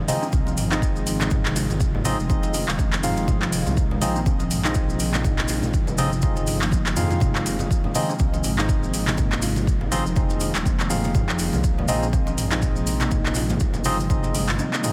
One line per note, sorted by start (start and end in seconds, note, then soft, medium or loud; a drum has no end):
0.00 14.93 C3 medium
0.00 14.93 D#3 medium
0.00 14.93 F3 medium
0.00 14.93 G#3 medium
0.00 7.20 D#4 medium
0.08 0.26 C4 medium
0.08 0.26 D#4 medium
0.08 0.26 F4 medium
0.08 0.26 G#4 medium
0.08 0.26 D#5 loud
0.08 open hi-hat medium
0.08 muted conga soft
0.08 high conga loud
0.08 cabasa medium
0.23 0.32 C4 loud
0.23 cabasa soft
0.32 0.54 C2 loud
0.32 0.46 C4 loud
0.32 kick loud
0.32 high conga medium
0.32 cabasa medium
0.47 0.53 F3 loud
0.47 muted conga medium
0.47 cabasa soft
0.57 2.15 G#1 medium
0.57 mid tom loud
0.57 open hi-hat medium
0.57 cabasa medium
0.71 2.03 C4 medium
0.71 2.03 D#4 medium
0.71 0.77 D#4 loud
0.71 2.03 F4 medium
0.71 2.03 G#4 medium
0.71 2.03 D#5 medium
0.71 clap loud
0.71 cabasa soft
0.82 kick loud
0.82 muted conga soft
0.82 cabasa medium
0.96 1.02 G#3 medium
0.96 cabasa soft
1.07 open hi-hat medium
1.07 cabasa loud
1.21 1.30 D#4 medium
1.21 clap medium
1.21 muted conga medium
1.21 high conga medium
1.21 cabasa soft
1.30 kick loud
1.30 mid tom medium
1.30 high conga medium
1.30 low conga medium
1.30 cabasa soft
1.46 1.55 C3 medium
1.46 clap medium
1.56 1.69 F4 loud
1.56 open hi-hat medium
1.56 cabasa loud
1.70 muted conga medium
1.70 high conga medium
1.70 low conga loud
1.70 cabasa soft
1.80 kick loud
1.80 cabasa medium
1.95 low conga loud
2.05 2.18 F3 medium
2.05 2.17 C4 loud
2.05 2.17 D#4 medium
2.05 2.17 F4 medium
2.05 2.17 G#4 medium
2.05 2.17 D#5 loud
2.05 open hi-hat medium
2.05 high conga loud
2.05 cabasa loud
2.19 2.64 F1 medium
2.19 cabasa soft
2.30 2.65 C4 medium
2.30 2.65 D#4 medium
2.30 2.65 F4 medium
2.30 2.42 F4 medium
2.30 2.65 G#4 medium
2.30 2.65 D#5 medium
2.30 kick loud
2.30 high conga medium
2.30 cabasa medium
2.43 muted conga medium
2.43 cabasa soft
2.54 2.67 G#3 loud
2.54 open hi-hat medium
2.54 cabasa medium
2.68 2.77 D#1 loud
2.68 clap loud
2.68 cabasa soft
2.79 3.63 F1 medium
2.79 2.92 C4 loud
2.79 kick loud
2.79 muted conga soft
2.79 cabasa soft
2.93 clap medium
2.93 cabasa soft
3.03 3.16 F3 medium
3.03 3.99 C4 medium
3.03 3.99 D#4 medium
3.03 3.99 F4 medium
3.03 3.99 G#4 medium
3.03 3.99 F5 medium
3.03 mid tom medium
3.03 open hi-hat medium
3.03 cabasa loud
3.17 muted conga medium
3.17 cabasa soft
3.28 3.41 F3 medium
3.28 kick loud
3.28 mid tom medium
3.28 high conga medium
3.28 low conga medium
3.28 cabasa soft
3.42 clap loud
3.52 open hi-hat medium
3.52 cabasa loud
3.66 3.99 C2 medium
3.66 3.76 F3 medium
3.66 muted conga medium
3.66 high conga medium
3.66 low conga medium
3.66 cabasa soft
3.77 kick loud
3.77 cabasa medium
3.91 3.97 G#3 medium
3.91 low conga loud
4.01 5.71 A#1 medium
4.01 4.19 C4 medium
4.01 4.19 D#4 medium
4.01 4.19 F4 medium
4.01 4.19 G#4 medium
4.01 4.19 D#5 loud
4.01 open hi-hat medium
4.01 muted conga soft
4.01 high conga loud
4.01 cabasa loud
4.16 4.25 C4 loud
4.16 cabasa soft
4.26 4.40 C4 loud
4.26 kick loud
4.26 high conga medium
4.26 cabasa medium
4.40 4.46 F3 loud
4.40 muted conga medium
4.40 cabasa soft
4.51 mid tom medium
4.51 open hi-hat medium
4.51 cabasa loud
4.65 5.96 C4 medium
4.65 4.71 D#4 loud
4.65 5.96 D#4 medium
4.65 5.96 F4 medium
4.65 5.96 G#4 medium
4.65 5.96 D#5 medium
4.65 clap loud
4.65 cabasa soft
4.75 kick loud
4.75 muted conga soft
4.75 cabasa medium
4.90 4.95 G#3 medium
4.90 cabasa soft
5.00 open hi-hat medium
5.00 cabasa loud
5.14 5.24 D#4 medium
5.14 clap medium
5.14 muted conga medium
5.14 high conga medium
5.14 cabasa soft
5.24 kick loud
5.24 mid tom medium
5.24 high conga medium
5.24 low conga medium
5.24 cabasa soft
5.39 5.48 C3 medium
5.39 clap medium
5.48 5.62 F4 loud
5.48 open hi-hat medium
5.48 cabasa medium
5.63 muted conga soft
5.63 high conga medium
5.63 low conga medium
5.63 cabasa soft
5.74 6.96 G1 medium
5.74 kick loud
5.74 cabasa medium
5.87 low conga loud
5.87 cabasa soft
5.98 6.11 F3 medium
5.98 6.10 C4 loud
5.98 6.10 D#4 medium
5.98 6.10 F4 medium
5.98 6.10 G#4 medium
5.98 6.10 D#5 loud
5.98 open hi-hat medium
5.98 high conga loud
5.98 cabasa loud
6.12 cabasa soft
6.22 6.58 C4 medium
6.22 6.58 D#4 medium
6.22 6.58 F4 medium
6.22 6.36 F4 medium
6.22 6.58 G#4 medium
6.22 6.58 D#5 medium
6.22 kick loud
6.22 high conga medium
6.22 cabasa medium
6.36 muted conga medium
6.36 cabasa soft
6.47 6.55 F3 medium
6.47 open hi-hat medium
6.47 cabasa medium
6.61 6.71 A#3 medium
6.61 clap loud
6.61 cabasa soft
6.71 6.86 F3 loud
6.71 kick loud
6.71 muted conga soft
6.71 cabasa medium
6.86 clap medium
6.86 cabasa soft
6.96 7.18 F2 medium
6.96 7.04 D#3 loud
6.96 7.93 C4 medium
6.96 7.93 D#4 medium
6.96 7.93 F4 medium
6.96 7.93 G#4 medium
6.96 7.93 F5 medium
6.96 mid tom medium
6.96 open hi-hat medium
6.96 cabasa loud
7.11 7.17 F4 medium
7.11 muted conga medium
7.11 cabasa soft
7.20 7.68 F1 loud
7.20 7.34 F3 medium
7.20 14.93 A#3 medium
7.20 kick loud
7.20 mid tom medium
7.20 high conga medium
7.20 low conga medium
7.20 cabasa medium
7.35 clap medium
7.46 open hi-hat medium
7.46 cabasa medium
7.59 7.70 F3 medium
7.59 muted conga medium
7.59 high conga medium
7.59 low conga medium
7.59 cabasa soft
7.71 kick loud
7.71 cabasa medium
7.84 7.91 G#3 medium
7.84 low conga loud
7.95 8.13 C4 medium
7.95 8.13 D#4 medium
7.95 8.13 F4 medium
7.95 8.13 G#4 medium
7.95 8.13 D#5 loud
7.95 open hi-hat medium
7.95 muted conga soft
7.95 high conga loud
7.95 cabasa loud
8.09 8.19 C4 loud
8.09 cabasa soft
8.19 8.41 C2 medium
8.19 8.33 C4 loud
8.19 kick loud
8.19 high conga medium
8.19 cabasa medium
8.34 8.40 F3 loud
8.34 muted conga medium
8.34 cabasa soft
8.44 10.02 G#1 medium
8.44 mid tom medium
8.44 open hi-hat medium
8.44 cabasa medium
8.58 9.90 C4 medium
8.58 8.64 D#4 loud
8.58 9.90 D#4 medium
8.58 9.90 F4 medium
8.58 9.90 G#4 medium
8.58 9.90 D#5 medium
8.58 clap loud
8.58 cabasa soft
8.69 kick loud
8.69 muted conga soft
8.69 cabasa medium
8.83 8.89 G#3 medium
8.83 cabasa soft
8.94 open hi-hat medium
8.94 cabasa medium
9.06 9.17 D#4 medium
9.06 clap medium
9.06 muted conga medium
9.06 high conga medium
9.06 cabasa soft
9.17 kick loud
9.17 mid tom medium
9.17 high conga medium
9.17 low conga medium
9.17 cabasa medium
9.32 9.42 C3 medium
9.32 clap medium
9.42 9.55 F4 loud
9.42 open hi-hat medium
9.42 cabasa loud
9.56 muted conga medium
9.56 high conga medium
9.56 low conga medium
9.56 cabasa soft
9.67 kick loud
9.67 cabasa medium
9.81 low conga loud
9.92 10.05 F3 medium
9.92 10.03 C4 loud
9.92 10.03 D#4 medium
9.92 10.03 F4 medium
9.92 10.03 G#4 medium
9.92 10.03 D#5 loud
9.92 open hi-hat medium
9.92 high conga loud
9.92 cabasa medium
10.06 10.51 F1 medium
10.06 cabasa soft
10.16 10.52 C4 medium
10.16 10.52 D#4 medium
10.16 10.52 F4 medium
10.16 10.29 F4 medium
10.16 10.52 G#4 medium
10.16 10.52 D#5 medium
10.16 kick loud
10.16 high conga medium
10.16 cabasa soft
10.30 muted conga soft
10.30 cabasa soft
10.40 10.54 G#3 loud
10.40 open hi-hat medium
10.40 cabasa medium
10.54 10.64 D#1 loud
10.54 clap loud
10.54 cabasa soft
10.66 11.50 F1 loud
10.66 10.79 C4 loud
10.66 kick loud
10.66 muted conga soft
10.66 cabasa medium
10.79 clap medium
10.79 cabasa soft
10.90 11.03 F3 medium
10.90 11.86 C4 medium
10.90 11.86 D#4 medium
10.90 11.86 F4 medium
10.90 11.86 G#4 medium
10.90 11.86 F5 medium
10.90 mid tom medium
10.90 open hi-hat medium
10.90 cabasa loud
11.04 muted conga medium
11.04 cabasa soft
11.15 11.28 F3 medium
11.15 kick loud
11.15 mid tom loud
11.15 high conga medium
11.15 low conga medium
11.15 cabasa medium
11.29 clap medium
11.39 open hi-hat medium
11.39 cabasa medium
11.53 11.86 C2 medium
11.53 11.63 F3 medium
11.53 muted conga medium
11.53 high conga medium
11.53 low conga medium
11.53 cabasa soft
11.64 kick loud
11.64 cabasa medium
11.78 11.84 G#3 medium
11.78 low conga loud
11.88 13.58 A#1 medium
11.88 12.06 C4 medium
11.88 12.06 D#4 medium
11.88 12.06 F4 medium
11.88 12.06 G#4 medium
11.88 12.06 D#5 loud
11.88 open hi-hat medium
11.88 muted conga soft
11.88 high conga loud
11.88 cabasa medium
12.03 12.12 C4 loud
12.03 cabasa soft
12.13 12.27 C4 loud
12.13 kick loud
12.13 high conga medium
12.13 cabasa soft
12.27 12.33 F3 loud
12.27 muted conga medium
12.27 cabasa soft
12.38 mid tom loud
12.38 open hi-hat medium
12.38 cabasa medium
12.51 13.83 C4 medium
12.51 13.83 D#4 medium
12.51 12.58 D#4 loud
12.51 13.83 F4 medium
12.51 13.83 G#4 medium
12.51 13.83 D#5 medium
12.51 clap medium
12.51 cabasa soft
12.62 kick loud
12.62 muted conga soft
12.62 cabasa medium
12.76 12.82 G#3 medium
12.76 cabasa soft
12.87 open hi-hat medium
12.87 cabasa medium
13.00 13.10 D#4 medium
13.00 clap medium
13.00 muted conga medium
13.00 high conga medium
13.00 cabasa soft
13.11 kick loud
13.11 mid tom loud
13.11 high conga medium
13.11 low conga medium
13.11 cabasa medium
13.26 13.35 C3 medium
13.26 clap medium
13.35 13.49 F4 loud
13.35 open hi-hat medium
13.35 cabasa medium
13.49 mid tom medium
13.49 muted conga medium
13.49 high conga medium
13.49 low conga medium
13.49 cabasa soft
13.60 14.59 G1 loud
13.60 kick loud
13.60 cabasa medium
13.74 low conga loud
13.74 cabasa soft
13.84 13.98 F3 medium
13.84 13.97 C4 loud
13.84 13.97 D#4 loud
13.84 13.97 F4 medium
13.84 13.97 G#4 medium
13.84 13.97 D#5 loud
13.84 open hi-hat medium
13.84 high conga loud
13.84 cabasa medium
14.00 cabasa soft
14.10 14.45 C4 medium
14.10 14.45 D#4 medium
14.10 14.23 F4 medium
14.10 14.45 F4 medium
14.10 14.45 G#4 medium
14.10 14.45 D#5 medium
14.10 kick loud
14.10 high conga medium
14.10 cabasa medium
14.24 muted conga medium
14.24 cabasa soft
14.35 14.47 G#3 loud
14.35 open hi-hat medium
14.35 cabasa medium
14.48 clap loud
14.48 cabasa soft
14.59 14.73 C4 loud
14.59 high tom medium
14.59 muted conga soft
14.59 cabasa soft
14.73 clap medium
14.73 high tom medium
14.73 cabasa soft
14.84 14.93 F3 medium
14.84 14.93 C4 medium
14.84 14.93 D#4 medium
14.84 14.93 F4 medium
14.84 14.93 G#4 medium
14.84 14.93 D#5 medium
14.84 mid tom loud
14.84 open hi-hat medium
14.84 cabasa medium